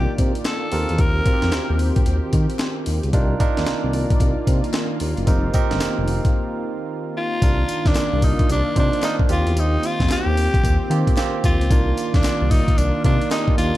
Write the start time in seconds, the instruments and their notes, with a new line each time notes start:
Already playing: analog synth pad D#3 A#3 F4 D5, tine electric piano D4 D#4 F4 A#4 D5, tenor saxophone G4
0.18 analog synth bass C3, kick, closed hi-hat
0.35 closed hi-hat
0.45 tenor saxophone A4, snare, clap, closed hi-hat
0.72 analog synth bass D#2, tine electric piano C4 F4 G4 A#4, analog synth pad C4 G4, open hi-hat
0.89 analog synth bass E2, closed hi-hat
0.98 analog synth bass D#2, tenor saxophone A#4, kick, closed hi-hat
1.26 tine electric piano C4 F4 F#4 A#4, kick, closed hi-hat
1.33 tine electric piano G4
1.42 analog synth bass F2, snare, closed hi-hat
1.52 analog synth bass D#2, snare, clap, closed hi-hat
1.70 analog synth bass D#2
1.79 open hi-hat
1.96 kick, closed hi-hat
2.06 analog synth bass D#2, closed hi-hat
2.33 analog synth bass D#3, kick, closed hi-hat
2.50 closed hi-hat
2.59 snare, clap, closed hi-hat
2.86 analog synth bass D#2, open hi-hat
3.03 analog synth bass C#2, closed hi-hat
3.13 analog synth bass C2, analog synth pad D#3 A#3 F4 D5, tine electric piano D4 D#4 F4 A#4, kick, closed hi-hat
3.40 tine electric piano D4 D#4 F4 A#4, kick, closed hi-hat
3.57 analog synth bass D#2, snare, closed hi-hat
3.66 analog synth bass C2, snare, clap, closed hi-hat
3.83 analog synth bass C2
3.93 open hi-hat
4.10 kick, closed hi-hat
4.20 analog synth bass C2, kick, closed hi-hat
4.47 analog synth bass C3, kick, closed hi-hat
4.64 closed hi-hat
4.74 snare, clap, closed hi-hat
5.00 analog synth bass D#2, open hi-hat
5.17 analog synth bass F#1, closed hi-hat
5.27 analog synth bass F1, tine electric piano C4 D#4 G4 A#4, kick, closed hi-hat, tambourine
5.54 tine electric piano C4 D#4 G4 A#4, kick, closed hi-hat, tambourine
5.71 analog synth bass G1, snare, closed hi-hat
5.80 analog synth bass F1, snare, clap, closed hi-hat, tambourine
5.98 analog synth bass F1
6.08 open hi-hat
6.25 kick, closed hi-hat
7.17 tenor saxophone F4
7.42 analog synth bass C2, analog synth pad D#3 A#3 D4 F4, tine electric piano D#3 D4 F4 A#4, kick, closed hi-hat, tambourine
7.68 closed hi-hat, tambourine
7.85 analog synth bass D#2, tenor saxophone D4, kick, snare, closed hi-hat
7.95 analog synth bass C2, snare, clap, closed hi-hat, tambourine
8.13 analog synth bass C2
8.22 tenor saxophone D#4, kick, open hi-hat, tambourine
8.39 kick, closed hi-hat
8.49 analog synth bass C2, tenor saxophone D4, closed hi-hat, tambourine
8.76 analog synth bass C3, tine electric piano D4 D#4 F4 C5, tenor saxophone D4, kick, closed hi-hat
8.93 closed hi-hat
9.03 tine electric piano D4 D#4 F4 A#4, tenor saxophone D#4, snare, clap, closed hi-hat, tambourine
9.19 kick
9.29 analog synth bass D#2, tine electric piano A#3 C4 F4 G4, analog synth pad C4 G4, tenor saxophone F4, closed hi-hat, tambourine
9.46 analog synth bass E2, closed hi-hat
9.56 analog synth bass D#2, tenor saxophone D#4, closed hi-hat, tambourine
9.83 tenor saxophone F4, closed hi-hat, tambourine
10.00 analog synth bass F2, kick, snare, closed hi-hat
10.09 analog synth bass D#2, tenor saxophone G4, snare, clap, closed hi-hat, tambourine
10.26 analog synth bass D#2
10.37 open hi-hat, tambourine
10.54 kick, closed hi-hat
10.64 analog synth bass D#2, kick, closed hi-hat, tambourine
10.90 analog synth bass D#3, tine electric piano A#3 C4 F4 G4, closed hi-hat
11.07 kick, closed hi-hat
11.17 tine electric piano A#3 C4 F4 G4, snare, clap, closed hi-hat, tambourine
11.44 analog synth bass D#2, tenor saxophone F4, kick, closed hi-hat, tambourine
11.60 analog synth bass C#2, closed hi-hat
11.69 analog synth bass C2, analog synth pad D#3 A#3 F4 D5, tine electric piano D#3 A#3 D4 F4, kick, closed hi-hat, tambourine
11.97 closed hi-hat, tambourine
12.14 analog synth bass D#2, tenor saxophone D4, kick, snare, closed hi-hat
12.24 analog synth bass C2, snare, clap, closed hi-hat, tambourine
12.41 analog synth bass C2
12.51 tenor saxophone D#4, kick, open hi-hat, tambourine
12.68 kick, closed hi-hat
12.78 analog synth bass C2, tenor saxophone D4, closed hi-hat, tambourine
13.04 analog synth bass C3, tine electric piano A#3 D4 D#4 F4, tenor saxophone D4, kick, closed hi-hat
13.21 closed hi-hat
13.31 tine electric piano A#3 D4 D#4 G4, tenor saxophone D#4, snare, clap, closed hi-hat, tambourine
13.48 kick
13.58 analog synth bass D#2, tenor saxophone F4, closed hi-hat, tambourine